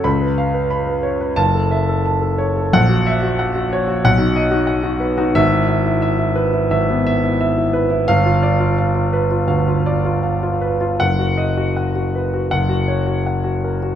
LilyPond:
<<
  \new Staff \with { instrumentName = "Grand piano" } { \time 4/4 \key fis \dorian \tempo 4 = 88 << { b''8 r4. a''8 r4. | \key b \major fis''8 r4. fis''8 r4. | e''8 r2. r8 | f''8 r2. r8 |
fis''8 r4. fis''8 r4. | } \\ { r16 b'16 eis''16 b'16 b''16 b'16 cis''16 b'16 r16 a'16 e''16 a'16 a''16 a'16 cis''16 a'16 | r16 fis'16 e''16 fis'16 fis''16 fis'16 cis''16 fis'16 r16 fis'16 dis''16 fis'16 fis''16 fis'16 b'16 fis'16 | r16 e'16 e''16 e'16 e''16 e'16 b'16 e'16 e''16 e'16 e''16 e'16 e''16 e'16 b'16 e'16 | r16 f'16 d''16 f'16 f''16 f'16 b'16 f'16 f''16 f'16 d''16 f'16 f''16 f'16 b'16 f'16 |
r16 fis'16 dis''16 fis'16 fis''16 fis'16 b'16 fis'16 r16 fis'16 cis''16 fis'16 fis''16 fis'16 ais'16 fis'16 | } >> }
  \new Staff \with { instrumentName = "Grand piano" } { \clef bass \time 4/4 \key fis \dorian cis,2 fis,,2 | \key b \major ais,,2 b,,16 dis'8 dis'8 dis'8 dis'16 | gis,,2 gis,,16 b8 r4 r16 | g,,2 d,8 r4. |
fis,,2 fis,,2 | }
>>